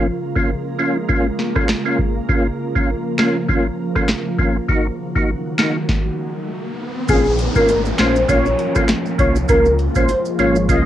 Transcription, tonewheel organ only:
0.35 A#3 C#4 F4
0.79 A#3 C#4 F4
1.09 A#3 C#4 F4
1.55 A#3 C#4 F4
1.85 A#3 C#4 F4
2.29 A#3 C#4 F4
2.75 A#3 C#4 F4
3.19 A#3 C#4 F4
3.49 A#3 C#4 F4
3.95 A#3 C#4 F4
4.39 A#3 C#4 F4
4.69 A#3 D#4 F#4
5.15 A#3 D#4 F#4
5.58 A#3 D#4 F#4
7.09 A#3 C#4 F4
7.56 A#3 C#4 F4
7.99 A#3 C#4 F4
8.29 A#3 C#4 F4
8.75 A#3 C#4 F4
9.19 A#3 C#4 F4
9.49 A#3 C#4 F4
9.96 A#3 C#4 F4
10.39 A#3 C#4 F4
10.69 A#3 C#4 F4

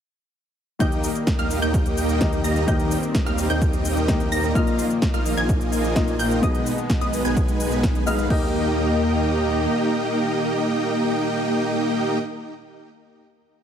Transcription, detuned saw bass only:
0.80 D#2
1.39 D#2
1.62 D#2
2.44 D#2
2.68 D#2
3.26 D#2
3.50 D#2
4.32 D#2
4.55 A#1
5.14 A#1
5.37 A#1
6.19 A#1
6.43 B1
7.01 B1
7.25 B1
8.07 B1
8.30 D#2

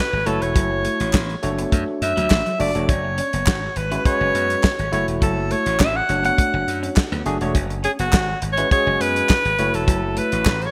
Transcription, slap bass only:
0.13 G#1
0.27 F#1
0.42 E1
0.56 F#1
1.00 A1
1.14 A1
1.44 F#1
1.72 F#2
2.02 F#2
2.17 D2
2.31 A1
2.60 F#1
2.75 E1
2.89 F#1
3.33 F#1
3.47 G#1
3.76 G#1
4.21 F#1
4.35 F#2
4.79 G#1
4.93 F#1
5.08 E1
5.22 F#1
5.66 A1
5.80 A1
6.09 F#1
6.54 F#1
6.67 F#2
7.12 D2
7.26 F#1
7.41 E1
7.55 F#1
7.99 F#1
8.13 G#1
8.42 G#1
8.87 F#1
9.00 F#2
9.45 G#1
9.59 F#1
9.74 E1
9.88 F#1
10.33 A1
10.46 A1

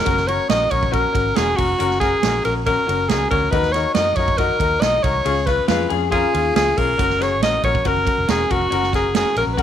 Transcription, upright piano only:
0.05 C#4 F#4 A#4
0.28 C#4 F#4 A#4
0.49 C#4 F#4 A#4
0.70 C#4 F#4 A#4
0.91 C#4 F#4 A#4
1.13 C#4 F#4 A#4
1.36 C#4 F#4 A#4
1.57 C#4 F#4 A#4
1.79 C#4 F#4 A#4
2.01 C#4 F#4 A#4
2.23 C#4 F#4 A#4
2.44 C#4 F#4 A#4
2.66 C#4 F#4 A#4
2.87 C#4 F#4 A#4
3.10 C#4 F#4 A#4
3.30 C#4 F#4 C#5
3.51 D#3 D#4 F#4 A#4
3.74 D#4 F#4 A#4
3.96 D#4 F#4 A#4
4.17 D#4 F#4 A#4
4.38 D#4 F#4 A#4
4.59 D#4 F#4 A#4
4.82 D#4 F#4 A#4
5.03 D#4 F#4 A#4
5.24 C#3 C#4 F4 G#4
5.46 C#4 F4 B4
5.69 C#4 F4 G#4
5.90 C#4 F4 G#4
6.12 C#4 F4 A#4
6.33 C#4 F4 G#4
6.55 C#4 F4 G#4
6.77 C#4 F4 G#4
6.98 C#4 F#4 A#4
7.19 C#4 F#4 G#4
7.42 C#4 F#4 A#4
7.64 C#4 F#4 A#4
7.84 C#4 F#4 A#4
8.05 C#4 F#4 A#4
8.28 C#4 F#4 A#4
8.50 C#4 F#4 A#4
8.70 C#4 F#4 A#4
8.93 C#4 F#4 A#4
9.15 C#4 F#4 A#4
9.37 C#4 F#4 A#4
9.57 C#4 F#4 A#4

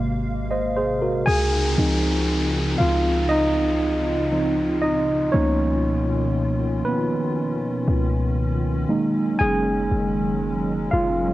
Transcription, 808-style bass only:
Already playing: G#1
1.27 C#2
1.78 C#2
2.80 C#2
5.34 C#2
7.88 C#2
9.41 F#1
9.92 F#1
10.93 F#1

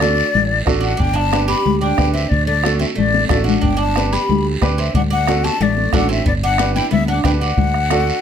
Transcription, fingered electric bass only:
Already playing: D2
0.35 A1
0.67 A1
1.00 G1
1.66 D2
1.98 D2
2.32 D2
2.98 A1
3.30 A1
3.63 G1
4.29 D2
4.62 D2
4.95 D2
5.60 A1
5.93 A1
6.26 G1
6.93 D2
7.25 D2
7.58 D2

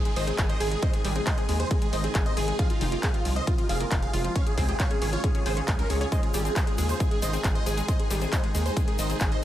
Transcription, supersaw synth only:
0.05 G#4
0.16 C5 D#5
0.27 G#4
0.38 G#4
0.49 C5 D#5
0.60 G#4
0.71 G#4
0.82 C5 D#5
0.93 G#4
1.05 G#4
1.16 G#4
1.27 C5 D#5
1.38 G#4
1.49 G#4
1.60 G#4 C5
1.71 G#4
1.82 G#4
1.93 C5 D#5
2.04 G#4
2.15 G#4
2.26 C5 D#5
2.37 G#4
2.48 G#4
2.59 G#4 F5
2.70 F4
2.81 F4
2.92 F4
3.03 G#4 F5
3.14 F4
3.25 F4
3.36 C5 D#5
3.47 F4
3.58 F4
3.69 G#4 F5
3.80 F4
3.91 F4
4.02 G#4 F5
4.14 F4
4.25 F4
4.36 C#5 F5
4.47 G#4
4.58 G#4
4.69 G#4
4.80 C#5 F5
4.91 G#4
5.02 G#4
5.13 F4 C#5
5.24 G#4
5.35 G#4
5.46 G#4 C5
5.57 G#4
5.68 G#4
5.79 C#4 A#4
5.90 G#4
6.01 G#4
6.12 C5 D#5
6.23 G#4
6.34 G#4
6.45 G#4
6.56 C5 D#5
6.67 G#4
6.78 G#4
6.89 G#4 C5
7.00 G#4
7.11 G#4
7.22 C5 D#5
7.33 G#4
7.44 G#4
7.55 C5 D#5
7.66 G#4
7.77 G#4
7.88 C5 D#5
7.99 G#4
8.10 G#4
8.21 G#4
8.33 C5 D#5
8.44 G#4
8.55 G#4
8.66 G#4 C5
8.77 G#4
8.88 G#4
8.99 C5 D#5
9.10 G#4
9.21 G#4
9.32 C5 D#5

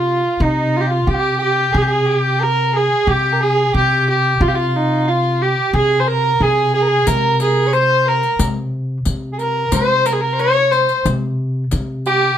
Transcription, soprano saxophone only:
Already playing: F4
0.41 D#4
0.87 F4
1.07 G4
1.14 F4
1.20 G4
1.39 G4
1.72 G#4
1.86 G#4
2.06 G4
2.40 A#4
2.67 A#4
2.73 G#4
3.08 G4
3.33 A#4
3.41 G#4
3.74 G4
4.41 F4
4.54 F4
5.08 F4
5.42 G4
5.74 G#4
6.07 A#4
6.42 G#4
6.74 G#4
6.82 A#4
6.88 G#4
7.08 A#4
7.67 C#5
7.73 C5
8.06 A#4
9.32 G#4
9.38 A#4
9.65 A#4
9.72 C5
10.07 A#4
10.33 C5
10.40 C#5
10.73 C5
12.07 G4

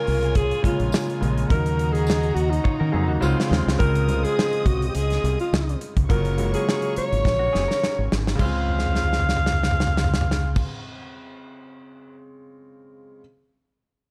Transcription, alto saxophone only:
Already playing: A#4
0.36 G#4
0.64 F4
1.51 A#4
1.93 G#4
2.35 F#4
2.50 D#4
3.79 A#4
4.24 G#4
4.66 F#4
4.89 G4
4.95 G#4
5.41 F4
6.10 A#4
6.55 G#4
6.98 C#5
8.40 F5

